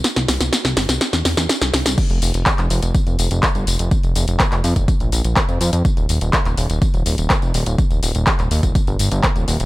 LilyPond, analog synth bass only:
\new Staff \with { instrumentName = "Analog synth bass" } { \clef bass \time 4/4 \key c \mixolydian \tempo 4 = 124 r16 c,16 c,16 c,16 r16 c,16 g,,16 c,16 r16 e,16 e,16 e,16 r16 c,16 c,16 c,16 | r16 f,,16 f,,16 f,,16 r16 f,,16 f,,16 f,,16 r16 f,,16 f,,16 f,,16 r16 g,,16 f,,16 f,,16 | r16 f,,16 f,,16 f,,16 r16 f,,16 f,16 f,,16 r16 bes,,16 bes,,16 bes,,16 r16 f,16 f,16 f,16 | r16 ees,,16 ees,,16 ees,,16 r16 ees,,16 ees,,16 ees,,16 r16 ees,,16 ees,,16 ees,,16 r16 f,,16 ees,,16 ees,,16 |
r16 ees,,16 ees,,16 ees,,16 r16 ees,,16 ees,16 ees,,16 r16 g,,16 g,,16 g,,16 r16 ees,,16 ees,,16 ees,,16 | }